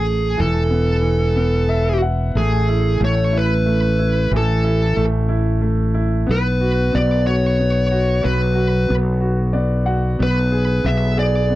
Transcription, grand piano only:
0, 0, Header, 1, 2, 480
1, 0, Start_track
1, 0, Key_signature, 3, "major"
1, 0, Tempo, 653595
1, 287, Time_signature, 6, 3, 24, 8
1, 8485, End_track
2, 0, Start_track
2, 0, Title_t, "Grand piano"
2, 0, Program_c, 0, 0
2, 0, Control_c, 0, 64, 127
2, 0, Note_on_c, 0, 57, 52
2, 258, Note_off_c, 0, 57, 0
2, 274, Note_on_c, 0, 52, 62
2, 298, Control_c, 0, 64, 0
2, 448, Control_c, 0, 64, 127
2, 516, Note_on_c, 0, 59, 53
2, 733, Note_off_c, 0, 52, 0
2, 744, Note_on_c, 0, 52, 53
2, 986, Note_off_c, 0, 59, 0
2, 997, Note_on_c, 0, 59, 57
2, 1241, Note_on_c, 0, 76, 71
2, 1468, Note_off_c, 0, 76, 0
2, 1485, Note_on_c, 0, 78, 68
2, 1689, Note_off_c, 0, 52, 0
2, 1702, Note_off_c, 0, 59, 0
2, 1711, Note_off_c, 0, 78, 0
2, 1731, Note_on_c, 0, 57, 64
2, 1739, Control_c, 0, 64, 0
2, 1854, Control_c, 0, 64, 127
2, 1972, Note_on_c, 0, 64, 55
2, 2193, Note_off_c, 0, 57, 0
2, 2204, Note_on_c, 0, 57, 58
2, 2431, Note_off_c, 0, 64, 0
2, 2442, Note_on_c, 0, 64, 54
2, 2674, Note_off_c, 0, 57, 0
2, 2685, Note_on_c, 0, 57, 51
2, 2917, Note_off_c, 0, 64, 0
2, 2928, Note_on_c, 0, 64, 54
2, 3175, Note_on_c, 0, 52, 67
2, 3396, Note_off_c, 0, 64, 0
2, 3407, Note_on_c, 0, 64, 55
2, 3620, Note_off_c, 0, 57, 0
2, 3646, Note_on_c, 0, 57, 64
2, 3872, Note_off_c, 0, 64, 0
2, 3883, Note_on_c, 0, 64, 56
2, 4113, Note_off_c, 0, 57, 0
2, 4124, Note_on_c, 0, 57, 57
2, 4354, Note_off_c, 0, 64, 0
2, 4365, Note_on_c, 0, 64, 61
2, 4584, Note_off_c, 0, 52, 0
2, 4594, Note_off_c, 0, 57, 0
2, 4601, Note_off_c, 0, 64, 0
2, 4602, Note_on_c, 0, 59, 64
2, 4620, Control_c, 0, 64, 0
2, 4732, Control_c, 0, 64, 127
2, 4851, Note_on_c, 0, 66, 56
2, 5074, Note_off_c, 0, 59, 0
2, 5085, Note_on_c, 0, 59, 58
2, 5321, Note_off_c, 0, 66, 0
2, 5332, Note_on_c, 0, 66, 58
2, 5568, Note_off_c, 0, 59, 0
2, 5579, Note_on_c, 0, 59, 50
2, 5800, Note_off_c, 0, 66, 0
2, 5811, Note_on_c, 0, 66, 57
2, 6044, Note_on_c, 0, 54, 68
2, 6267, Note_off_c, 0, 66, 0
2, 6278, Note_on_c, 0, 66, 55
2, 6504, Note_off_c, 0, 59, 0
2, 6525, Note_on_c, 0, 59, 52
2, 6748, Note_off_c, 0, 66, 0
2, 6759, Note_on_c, 0, 66, 56
2, 6992, Note_off_c, 0, 59, 0
2, 7000, Note_on_c, 0, 74, 64
2, 7003, Note_on_c, 0, 59, 48
2, 7226, Note_off_c, 0, 74, 0
2, 7228, Note_off_c, 0, 66, 0
2, 7239, Note_on_c, 0, 66, 59
2, 7240, Note_on_c, 0, 78, 66
2, 7454, Note_off_c, 0, 54, 0
2, 7466, Note_off_c, 0, 78, 0
2, 7470, Note_off_c, 0, 59, 0
2, 7475, Note_off_c, 0, 66, 0
2, 7485, Note_on_c, 0, 59, 61
2, 7497, Control_c, 0, 64, 0
2, 7636, Control_c, 0, 64, 127
2, 7725, Note_on_c, 0, 68, 54
2, 7952, Note_off_c, 0, 59, 0
2, 7963, Note_on_c, 0, 59, 59
2, 8193, Note_off_c, 0, 68, 0
2, 8204, Note_on_c, 0, 68, 57
2, 8434, Note_off_c, 0, 59, 0
2, 8445, Note_on_c, 0, 59, 50
2, 8485, Note_off_c, 0, 59, 0
2, 8485, Note_off_c, 0, 68, 0
2, 8485, End_track
0, 0, End_of_file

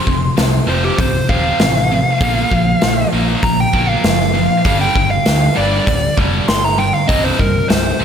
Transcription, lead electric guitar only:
0, 0, Header, 1, 2, 480
1, 0, Start_track
1, 0, Tempo, 609756
1, 1738, Time_signature, 4, 2, 24, 8
1, 6334, End_track
2, 0, Start_track
2, 0, Title_t, "Lead electric guitar"
2, 0, Program_c, 0, 29
2, 0, Note_on_c, 0, 84, 84
2, 274, Note_off_c, 0, 84, 0
2, 541, Note_on_c, 0, 72, 86
2, 656, Note_off_c, 0, 72, 0
2, 662, Note_on_c, 0, 67, 85
2, 776, Note_off_c, 0, 67, 0
2, 780, Note_on_c, 0, 72, 76
2, 1012, Note_off_c, 0, 72, 0
2, 1019, Note_on_c, 0, 77, 90
2, 2427, Note_off_c, 0, 77, 0
2, 2702, Note_on_c, 0, 82, 86
2, 2817, Note_off_c, 0, 82, 0
2, 2837, Note_on_c, 0, 79, 80
2, 3061, Note_off_c, 0, 79, 0
2, 3061, Note_on_c, 0, 77, 77
2, 3758, Note_off_c, 0, 77, 0
2, 3790, Note_on_c, 0, 79, 78
2, 4017, Note_off_c, 0, 79, 0
2, 4021, Note_on_c, 0, 77, 89
2, 4369, Note_off_c, 0, 77, 0
2, 4386, Note_on_c, 0, 74, 84
2, 4848, Note_off_c, 0, 74, 0
2, 5104, Note_on_c, 0, 84, 92
2, 5230, Note_off_c, 0, 84, 0
2, 5230, Note_on_c, 0, 82, 75
2, 5341, Note_off_c, 0, 82, 0
2, 5341, Note_on_c, 0, 79, 79
2, 5456, Note_off_c, 0, 79, 0
2, 5463, Note_on_c, 0, 77, 81
2, 5571, Note_off_c, 0, 77, 0
2, 5571, Note_on_c, 0, 75, 87
2, 5700, Note_off_c, 0, 75, 0
2, 5700, Note_on_c, 0, 72, 86
2, 5816, Note_off_c, 0, 72, 0
2, 5819, Note_on_c, 0, 70, 78
2, 6048, Note_on_c, 0, 72, 90
2, 6052, Note_off_c, 0, 70, 0
2, 6286, Note_off_c, 0, 72, 0
2, 6334, End_track
0, 0, End_of_file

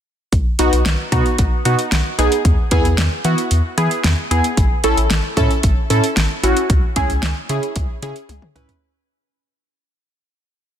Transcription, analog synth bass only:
0, 0, Header, 1, 2, 480
1, 0, Start_track
1, 0, Tempo, 530973
1, 295, Time_signature, 4, 2, 24, 8
1, 9757, End_track
2, 0, Start_track
2, 0, Title_t, "Analog synth bass"
2, 0, Program_c, 0, 38
2, 295, Note_on_c, 0, 35, 107
2, 386, Note_off_c, 0, 35, 0
2, 536, Note_on_c, 0, 35, 98
2, 626, Note_off_c, 0, 35, 0
2, 656, Note_on_c, 0, 35, 92
2, 747, Note_off_c, 0, 35, 0
2, 775, Note_on_c, 0, 35, 103
2, 866, Note_off_c, 0, 35, 0
2, 1014, Note_on_c, 0, 47, 103
2, 1105, Note_off_c, 0, 47, 0
2, 1256, Note_on_c, 0, 35, 98
2, 1346, Note_off_c, 0, 35, 0
2, 1495, Note_on_c, 0, 47, 96
2, 1586, Note_off_c, 0, 47, 0
2, 1735, Note_on_c, 0, 35, 100
2, 1826, Note_off_c, 0, 35, 0
2, 1975, Note_on_c, 0, 35, 99
2, 2066, Note_off_c, 0, 35, 0
2, 2215, Note_on_c, 0, 40, 112
2, 2306, Note_off_c, 0, 40, 0
2, 2455, Note_on_c, 0, 40, 100
2, 2546, Note_off_c, 0, 40, 0
2, 2575, Note_on_c, 0, 40, 94
2, 2666, Note_off_c, 0, 40, 0
2, 2695, Note_on_c, 0, 40, 98
2, 2786, Note_off_c, 0, 40, 0
2, 2934, Note_on_c, 0, 52, 107
2, 3026, Note_off_c, 0, 52, 0
2, 3175, Note_on_c, 0, 40, 98
2, 3266, Note_off_c, 0, 40, 0
2, 3415, Note_on_c, 0, 52, 103
2, 3506, Note_off_c, 0, 52, 0
2, 3656, Note_on_c, 0, 40, 98
2, 3746, Note_off_c, 0, 40, 0
2, 3895, Note_on_c, 0, 40, 95
2, 3986, Note_off_c, 0, 40, 0
2, 4135, Note_on_c, 0, 33, 107
2, 4226, Note_off_c, 0, 33, 0
2, 4376, Note_on_c, 0, 33, 92
2, 4466, Note_off_c, 0, 33, 0
2, 4496, Note_on_c, 0, 33, 94
2, 4586, Note_off_c, 0, 33, 0
2, 4615, Note_on_c, 0, 33, 107
2, 4706, Note_off_c, 0, 33, 0
2, 4854, Note_on_c, 0, 45, 101
2, 4945, Note_off_c, 0, 45, 0
2, 5096, Note_on_c, 0, 33, 98
2, 5187, Note_off_c, 0, 33, 0
2, 5336, Note_on_c, 0, 45, 104
2, 5427, Note_off_c, 0, 45, 0
2, 5576, Note_on_c, 0, 33, 100
2, 5666, Note_off_c, 0, 33, 0
2, 5814, Note_on_c, 0, 33, 95
2, 5905, Note_off_c, 0, 33, 0
2, 6055, Note_on_c, 0, 37, 109
2, 6146, Note_off_c, 0, 37, 0
2, 6295, Note_on_c, 0, 37, 102
2, 6386, Note_off_c, 0, 37, 0
2, 6415, Note_on_c, 0, 37, 103
2, 6506, Note_off_c, 0, 37, 0
2, 6535, Note_on_c, 0, 37, 104
2, 6626, Note_off_c, 0, 37, 0
2, 6774, Note_on_c, 0, 49, 93
2, 6865, Note_off_c, 0, 49, 0
2, 7015, Note_on_c, 0, 37, 97
2, 7106, Note_off_c, 0, 37, 0
2, 7253, Note_on_c, 0, 49, 106
2, 7345, Note_off_c, 0, 49, 0
2, 7494, Note_on_c, 0, 37, 101
2, 7585, Note_off_c, 0, 37, 0
2, 7733, Note_on_c, 0, 37, 99
2, 7825, Note_off_c, 0, 37, 0
2, 9757, End_track
0, 0, End_of_file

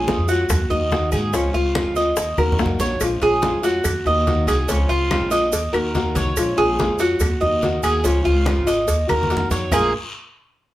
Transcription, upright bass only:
0, 0, Header, 1, 2, 480
1, 0, Start_track
1, 0, Key_signature, -5, "minor"
1, 0, Tempo, 419287
1, 1527, Time_signature, 4, 2, 24, 8
1, 12295, End_track
2, 0, Start_track
2, 0, Title_t, "Upright bass"
2, 0, Program_c, 0, 32
2, 0, Note_on_c, 0, 34, 100
2, 187, Note_off_c, 0, 34, 0
2, 206, Note_on_c, 0, 41, 80
2, 548, Note_off_c, 0, 41, 0
2, 564, Note_on_c, 0, 39, 102
2, 793, Note_off_c, 0, 39, 0
2, 798, Note_on_c, 0, 39, 112
2, 1258, Note_off_c, 0, 39, 0
2, 1287, Note_on_c, 0, 44, 98
2, 1515, Note_off_c, 0, 44, 0
2, 1523, Note_on_c, 0, 37, 97
2, 1753, Note_off_c, 0, 37, 0
2, 1761, Note_on_c, 0, 37, 88
2, 2106, Note_off_c, 0, 37, 0
2, 2119, Note_on_c, 0, 38, 76
2, 2465, Note_off_c, 0, 38, 0
2, 2485, Note_on_c, 0, 39, 88
2, 2714, Note_off_c, 0, 39, 0
2, 2721, Note_on_c, 0, 39, 105
2, 2952, Note_off_c, 0, 39, 0
2, 2960, Note_on_c, 0, 36, 81
2, 3179, Note_off_c, 0, 36, 0
2, 3199, Note_on_c, 0, 34, 92
2, 3419, Note_off_c, 0, 34, 0
2, 3443, Note_on_c, 0, 34, 104
2, 3673, Note_off_c, 0, 34, 0
2, 3683, Note_on_c, 0, 34, 87
2, 4027, Note_off_c, 0, 34, 0
2, 4049, Note_on_c, 0, 41, 74
2, 4390, Note_off_c, 0, 41, 0
2, 4405, Note_on_c, 0, 39, 86
2, 4634, Note_off_c, 0, 39, 0
2, 4643, Note_on_c, 0, 39, 115
2, 5101, Note_off_c, 0, 39, 0
2, 5115, Note_on_c, 0, 36, 101
2, 5349, Note_off_c, 0, 36, 0
2, 5364, Note_on_c, 0, 37, 113
2, 5594, Note_off_c, 0, 37, 0
2, 5607, Note_on_c, 0, 37, 93
2, 5950, Note_off_c, 0, 37, 0
2, 5966, Note_on_c, 0, 34, 78
2, 6310, Note_off_c, 0, 34, 0
2, 6330, Note_on_c, 0, 39, 95
2, 6554, Note_off_c, 0, 39, 0
2, 6561, Note_on_c, 0, 39, 101
2, 7021, Note_off_c, 0, 39, 0
2, 7047, Note_on_c, 0, 36, 95
2, 7277, Note_off_c, 0, 36, 0
2, 7292, Note_on_c, 0, 34, 98
2, 7519, Note_off_c, 0, 34, 0
2, 7533, Note_on_c, 0, 34, 106
2, 7874, Note_off_c, 0, 34, 0
2, 7880, Note_on_c, 0, 41, 82
2, 8227, Note_off_c, 0, 41, 0
2, 8236, Note_on_c, 0, 39, 89
2, 8471, Note_off_c, 0, 39, 0
2, 8488, Note_on_c, 0, 39, 108
2, 8946, Note_off_c, 0, 39, 0
2, 8964, Note_on_c, 0, 39, 100
2, 9196, Note_off_c, 0, 39, 0
2, 9212, Note_on_c, 0, 37, 102
2, 9440, Note_off_c, 0, 37, 0
2, 9451, Note_on_c, 0, 37, 104
2, 9793, Note_off_c, 0, 37, 0
2, 9807, Note_on_c, 0, 32, 85
2, 10151, Note_off_c, 0, 32, 0
2, 10169, Note_on_c, 0, 39, 83
2, 10398, Note_off_c, 0, 39, 0
2, 10417, Note_on_c, 0, 39, 97
2, 10870, Note_off_c, 0, 39, 0
2, 10883, Note_on_c, 0, 41, 96
2, 11111, Note_off_c, 0, 41, 0
2, 11118, Note_on_c, 0, 34, 92
2, 11347, Note_off_c, 0, 34, 0
2, 12295, End_track
0, 0, End_of_file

